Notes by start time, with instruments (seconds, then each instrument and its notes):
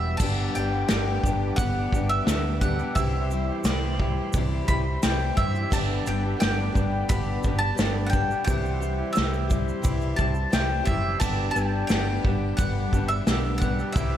Already playing: fingered electric bass E1, clean electric guitar E2 B2 E3 G3 B3 G4, steel-string acoustic guitar E3 G3 B3 G4, tonewheel organ E4 G4 B4 E5, mandolin E5
0.17 fingered electric bass G1, clean electric guitar G2 D3, tonewheel organ D4 G4 B4 D5, mandolin A5, kick, crash, shaker
0.21 clean electric guitar G3 B3 D4 G4
0.55 fingered electric bass G1, steel-string acoustic guitar B3 D4 G4, mandolin G5, shaker
0.60 steel-string acoustic guitar G3
0.72 clean electric guitar G3 B3 D4 G4
0.88 fingered electric bass G1, clean electric guitar G2 D3 G3 B3 D4 G4, mandolin G5, snare, open hi-hat, shaker
1.23 fingered electric bass G1, clean electric guitar G3 B3 D4, kick, shaker
1.27 clean electric guitar G4
1.56 fingered electric bass G1, steel-string acoustic guitar G2 D3 G3, mandolin F#5, kick, open hi-hat, shaker
1.61 steel-string acoustic guitar B3 D4 G4
1.92 fingered electric bass G1, clean electric guitar G3 B3 D4 G4, kick, shaker
1.97 steel-string acoustic guitar G3
2.09 mandolin E5, muted clean electric guitar stroke
2.26 fingered electric bass D2, clean electric guitar G2 D3 G3 B3 D4 G4, snare, open hi-hat, shaker
2.46 muted clean electric guitar stroke
2.61 clean electric guitar G3 B3 D4, steel-string acoustic guitar G4, mandolin F#5, kick, shaker
2.65 clean electric guitar G4
2.79 clean electric guitar G3 B3 D4 G4, shaker
2.95 fingered electric bass C2, clean electric guitar C3 E3 G3 E4, tonewheel organ C4 E4 G4 C5, mandolin E5, kick, open hi-hat, shaker
2.99 clean electric guitar G4
3.30 steel-string acoustic guitar G3 E4 G4, shaker
3.49 clean electric guitar G3 E4 G4
3.64 fingered electric bass C2, clean electric guitar C3 E3 G3 E4, mandolin D5, snare, open hi-hat, shaker
3.69 clean electric guitar G4
3.99 clean electric guitar E3 G3 E4 G4, kick
4.33 fingered electric bass C2, steel-string acoustic guitar C3 E3 G3 E4, kick, open hi-hat, shaker
4.37 steel-string acoustic guitar G4
4.68 fingered electric bass C2, clean electric guitar E3 G3 E4 G4, mandolin B5, kick, shaker
4.86 muted clean electric guitar stroke
5.03 fingered electric bass C2, clean electric guitar C3 E3 G3 E4, mandolin G5, snare, open hi-hat, shaker
5.07 clean electric guitar G4
5.21 muted clean electric guitar stroke
5.35 fingered electric bass G2, clean electric guitar E3, steel-string acoustic guitar G4, mandolin E5, kick, shaker
5.40 clean electric guitar G3 E4 G4
5.55 clean electric guitar E4 G4, shaker
5.59 clean electric guitar G3
5.71 fingered electric bass G1, clean electric guitar G2 D3 G3, steel-string acoustic guitar B3 D4, tonewheel organ D4 G4, mandolin A5, kick, crash, shaker
5.75 tonewheel organ B3 B4, clean electric guitar B3 D4 G4
6.04 fingered electric bass G1, steel-string acoustic guitar B3 D4 G4, mandolin G5, shaker
6.08 steel-string acoustic guitar G3
6.24 clean electric guitar G3 B3 D4 G4
6.37 steel-string acoustic guitar G3 B3 D4 G4, mandolin G5, shaker
6.41 fingered electric bass G1, clean electric guitar G2 D3 G3 B3 D4 G4, snare, open hi-hat
6.72 fingered electric bass G1, clean electric guitar G3, steel-string acoustic guitar G4, kick, shaker
6.77 clean electric guitar B3 D4 G4
7.08 fingered electric bass G1, steel-string acoustic guitar G2 D3 G3 B3 D4 G4, mandolin B5, kick, open hi-hat, shaker
7.42 fingered electric bass G1, clean electric guitar G3, steel-string acoustic guitar G4, kick, shaker
7.46 clean electric guitar B3 D4 G4
7.59 mandolin A5, muted clean electric guitar stroke
7.75 fingered electric bass G1, steel-string acoustic guitar G3 B3, snare, open hi-hat, shaker
7.79 clean electric guitar G2 D3 G3 B3 D4 G4
7.97 muted clean electric guitar stroke
8.06 mandolin F#5 G5
8.11 clean electric guitar G3 B3 D4, steel-string acoustic guitar G4, kick, shaker
8.16 clean electric guitar G4
8.30 clean electric guitar G3 B3 D4 G4, shaker
8.44 clean electric guitar C3 E3, tonewheel organ C4 C5, mandolin F#5, kick, open hi-hat, shaker
8.48 fingered electric bass C2, clean electric guitar G3 E4 G4, tonewheel organ E4 G4
8.65 shaker
8.80 steel-string acoustic guitar G3 E4 G4, shaker
8.98 clean electric guitar G3 E4 G4
9.13 clean electric guitar C3 E3, mandolin E5, shaker
9.17 fingered electric bass C2, clean electric guitar G3 E4 G4, snare, open hi-hat
9.33 shaker
9.48 clean electric guitar E3 G3 E4, steel-string acoustic guitar G4, kick, shaker
9.52 clean electric guitar G4
9.68 shaker
9.82 fingered electric bass C2, steel-string acoustic guitar C3 E3 G3 E4 G4, kick, open hi-hat, shaker
10.01 shaker
10.16 fingered electric bass C2, clean electric guitar E3 G3, steel-string acoustic guitar G4, mandolin A5, kick, shaker
10.21 clean electric guitar E4 G4
10.34 muted clean electric guitar stroke, shaker
10.52 fingered electric bass C2, clean electric guitar C3 E3 G3 E4 G4, mandolin G5, snare, open hi-hat, shaker
10.71 muted clean electric guitar stroke
10.84 fingered electric bass F#1, clean electric guitar E3, steel-string acoustic guitar G4, mandolin E5, kick, shaker
10.88 clean electric guitar G3 E4 G4
11.03 clean electric guitar G3 E4 G4
11.20 fingered electric bass G1, clean electric guitar G2 D3 G3 B3 D4 G4, tonewheel organ B3 D4 G4 B4, mandolin A5, kick, crash, shaker
11.51 steel-string acoustic guitar D4 G4, mandolin G5
11.55 fingered electric bass G1, steel-string acoustic guitar G3 B3, shaker
11.72 clean electric guitar G3 B3 D4 G4
11.87 fingered electric bass G1, clean electric guitar G2 D3 G3, mandolin G5, snare, open hi-hat, shaker
11.92 clean electric guitar B3 D4 G4
12.24 fingered electric bass G1, clean electric guitar G3 B3 D4 G4, kick
12.57 fingered electric bass G1, steel-string acoustic guitar G2 D3 G3 B3 D4 G4, mandolin F#5, kick, open hi-hat, shaker
12.92 fingered electric bass G1, clean electric guitar G3 B3 D4 G4, kick, shaker
12.97 steel-string acoustic guitar G3
13.08 mandolin E5, muted clean electric guitar stroke
13.27 fingered electric bass B1, clean electric guitar G2 D3 G3 B3 D4, snare, open hi-hat, shaker
13.31 clean electric guitar G4
13.45 muted clean electric guitar stroke
13.58 clean electric guitar G3, mandolin F#5, kick, shaker
13.62 steel-string acoustic guitar G3, clean electric guitar B3 D4 G4
13.77 clean electric guitar G3 B3 D4 G4, shaker
13.92 fingered electric bass C2, clean electric guitar C3 E3 G3, tonewheel organ C4 E4 G4 C5, steel-string acoustic guitar C4, mandolin E5, kick, open hi-hat, shaker
13.97 clean electric guitar E4 G4